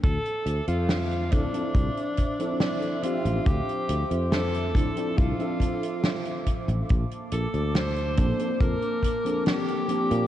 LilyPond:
<<
  \new Staff \with { instrumentName = "Ambient pad" } { \time 4/4 \key d \minor \tempo 4 = 70 << { d'''1~ | d'''1~ | d'''1 | } \\ { <c'' e''>1~ | <c'' e''>1 | <bes a''>1 | } >> }
  \new Staff \with { instrumentName = "Alto saxophone" } { \time 4/4 \key d \minor a'8. f'8. d'4. d'8 f'8 | g'8. r16 a'4 f'4. r8 | r8 a'8 c''4 bes'4 g'4 | }
  \new Staff \with { instrumentName = "FM electric piano" } { \time 4/4 \key d \minor r4. <f c' d' e' a'>16 <f c' d' e' a'>16 r8. <f c' d' e' a'>8. <f c' d' g' e''>8~ | <f c' d' g' e''>4. <f c' d' e' a'>16 <f c' d' e' a'>8 <f c' d' a' e''>4.~ <f c' d' a' e''>16 | r4. <f bes c' d' a'>16 <f bes c' d' a'>16 r8. <f bes c' d' a'>8. <f bes c' d' g'>8 | }
  \new Staff \with { instrumentName = "Fretless electric bass" } { \clef bass \time 4/4 \key d \minor d,16 r16 d,16 f,8. d,16 r16 c,16 r4. a,,16 | d,16 r16 d,16 f,8. d,16 r16 c,16 r4. a,,16 | bes,,16 r16 bes,,16 d,8. bes,,16 r16 f,16 r4. bes,16 | }
  \new DrumStaff \with { instrumentName = "Drums" } \drummode { \time 4/4 <hh bd>16 hh16 hh16 hh16 <hh sn>16 hh16 <hh bd>16 hh16 <hh bd>16 hh16 <hh bd>16 hh16 <hh sn>16 hh16 hh16 hh16 | <hh bd>16 hh16 hh16 hh16 <hh sn>16 hh16 <hh bd>16 hh16 <hh bd>16 hh16 <hh bd>16 hh16 <hh sn>16 hh16 <hh bd>16 hh16 | <hh bd>16 hh16 hh16 hh16 <hh sn>16 hh16 <hh bd>16 hh16 <hh bd>16 hh16 <hh bd>16 hh16 <hh sn>16 hh16 hh16 hh16 | }
>>